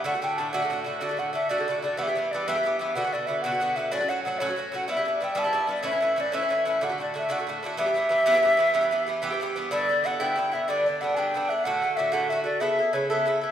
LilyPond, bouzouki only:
\new Staff \with { instrumentName = "Bouzouki" } { \time 12/8 \key e \dorian \tempo 4. = 124 <a, d a fis'>16 <d a fis'>16 <a, d a fis'>8 <a, d a fis'>8 <a, d a fis'>16 <d a fis'>16 <a, d a fis'>8 <a, d a fis'>8 <a, d a fis'>16 <d a fis'>16 <a, d a fis'>8 <a, d a fis'>8 <a, d a fis'>16 <d a fis'>16 <a, d a fis'>8 <a, d a fis'>8 | <g, e b g'>16 <e b g'>16 <g, e b g'>8 <g, e b g'>8 <g, e b g'>16 <e b g'>16 <g, e b g'>8 <g, e b g'>8 <b, d b fis'>16 <d b fis'>16 <b, d b fis'>8 <b, d b fis'>8 <b, d b fis'>16 <d b fis'>16 <b, d b fis'>8 <b, d b fis'>8 | <a, fis cis' fis'>16 <fis cis' fis'>16 <a, fis cis' fis'>8 <a, fis cis' fis'>8 <a, fis cis' fis'>16 <fis cis' fis'>16 <fis cis' fis'>8 <a, fis cis' fis'>8 <g, g b e'>16 <g b e'>16 <g, g b e'>8 <g, g b e'>8 <g, g b e'>16 <g b e'>16 <g, g b e'>8 <g, g b e'>8 | <a, e cis' e'>16 <e cis' e'>16 <a, e cis' e'>8 <a, e cis' e'>8 <a, e cis' e'>16 <e cis' e'>16 <a, e cis' e'>8 <a, e cis' e'>8 <a, d a fis'>16 <d a fis'>16 <a, d a fis'>8 <a, d a fis'>8 <a, d a fis'>16 <d a fis'>16 <a, d a fis'>8 <a, d a fis'>8 |
<g, e b g'>16 <e b g'>16 <g, e b g'>8 <g, e b g'>8 <g, e b g'>16 <e b g'>16 <g, e b g'>8 <g, e b g'>8 <g, e b g'>16 <e b g'>16 <g, e b g'>8 <g, e b g'>8 <g, e b g'>16 <e b g'>16 <g, e b g'>8 <g, e b g'>8 | <g, d b e'>8 <d b e'>8 <g, d b e'>8 <g, d b e'>8 <g, d b e'>8 <d b e'>8 <g, d b d'>8 <d b d'>8 <g, d b d'>8 <g, d b d'>8 <g, d b d'>8 <d b d'>8 | <a, d a fis'>8 <d a fis'>8 <a, d a fis'>8 <a, d a fis'>8 <a, d a fis'>8 <d a fis'>8 <cis b e' a'>8 <b e' a'>8 <cis b e' a'>8 <cis b e' a'>8 <cis b e' a'>8 <b e' a'>8 | }